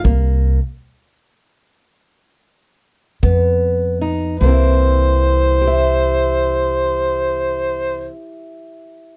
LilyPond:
<<
  \new Staff \with { instrumentName = "Harmonica" } { \time 12/8 \key c \mixolydian \tempo 4. = 50 r1. | c''1. | }
  \new Staff \with { instrumentName = "Steel-string acoustic guitar" } { \time 12/8 \key c \mixolydian << { r1. | r4. <g' e''>1~ <g' e''>8 | } \\ { <c bes>4 r2. r8 <des ces'>4 ees'8 | <c e bes c' e'>1. | } >> }
  \new Staff \with { instrumentName = "Upright bass" } { \clef bass \time 12/8 \key c \mixolydian c,4 r2. r8 f,4. | c,1. | }
  \new DrumStaff \with { instrumentName = "Drums" } \drummode { \time 12/8 bd4. r4. r4. bd4. | r4. r4. r4. r4. | }
>>